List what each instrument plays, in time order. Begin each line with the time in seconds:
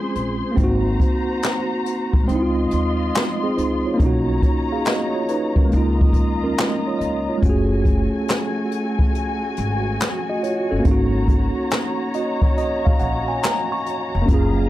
Already playing: tine electric piano G#3 C4 C#4 F4, string section G#4 C5 C6
0.15 upright bass A#1, closed hi-hat
0.52 tine electric piano A#3
0.56 upright bass G#1, tine electric piano C4 D#4, string section F#4 C5 A#5, kick, closed hi-hat
0.64 tine electric piano F#4
1.00 kick, closed hi-hat
1.42 snare, clap, closed hi-hat
1.86 closed hi-hat
2.13 upright bass A#1, kick
2.23 tine electric piano G#3, string section F4 D#5 C6
2.28 upright bass C#2, tine electric piano C4 D#4, closed hi-hat
2.36 tine electric piano E4
2.42 tine electric piano F4
2.71 upright bass D#2, closed hi-hat
3.15 snare, clap, closed hi-hat
3.43 tine electric piano C4 G#4
3.57 upright bass C#2, tine electric piano D#4 C5, closed hi-hat
3.86 tine electric piano F4 C#5
3.94 tine electric piano A#3 C#4
3.99 upright bass B1, string section D#4 C#5 A#5, tine electric piano D#4, kick, closed hi-hat
4.06 tine electric piano F#4
4.42 kick, closed hi-hat
4.72 tine electric piano G#4 F5
4.85 tine electric piano F#4 D#5, snare, clap, closed hi-hat
5.15 tine electric piano F4 C#5
5.28 tine electric piano D#4 B4, closed hi-hat
5.56 upright bass C#2, tine electric piano C#4 A#4, kick
5.65 tine electric piano G#3
5.69 upright bass C#2, tine electric piano A#3, string section F4 D#5 A#5, closed hi-hat
5.74 tine electric piano D#4 F4
6.01 kick
6.13 upright bass D#2, kick, closed hi-hat
6.44 tine electric piano C#4 A#4
6.58 snare, clap, closed hi-hat
6.87 tine electric piano F4 C#5
6.99 upright bass C#2, tine electric piano D#5, closed hi-hat
7.29 tine electric piano F4 C#5
7.38 tine electric piano G#3
7.42 upright bass F#1, string section A3 F#4 G#5, tine electric piano A3 C#4 F#4, kick, closed hi-hat
7.50 tine electric piano G#4
7.85 kick, closed hi-hat
8.28 snare, clap, closed hi-hat
8.72 closed hi-hat
8.99 kick
9.15 closed hi-hat
9.57 upright bass G#1, closed hi-hat
10.00 snare, clap, closed hi-hat
10.30 tine electric piano F#4 D#5
10.43 tine electric piano F4 C#5, closed hi-hat
10.71 upright bass G1, tine electric piano C#4 A4
10.79 tine electric piano A#3 C#4
10.85 upright bass G#1, tine electric piano D#4, string section C#5 A#5, kick, closed hi-hat
10.91 tine electric piano F#4
11.28 kick, closed hi-hat
11.70 snare, clap, closed hi-hat
12.14 tine electric piano D#5, closed hi-hat
12.42 tine electric piano C#5, kick
12.57 tine electric piano D#5, closed hi-hat
12.85 tine electric piano F5, kick
12.99 upright bass A#1, tine electric piano F#5, closed hi-hat
13.28 tine electric piano G#5
13.43 tine electric piano A#5, snare, clap, closed hi-hat
13.72 tine electric piano C#6
13.86 closed hi-hat
14.15 upright bass F1
14.22 tine electric piano A#3 C#4
14.27 upright bass F#1, tine electric piano F4, string section G#4 F5, kick, closed hi-hat
14.34 tine electric piano G#4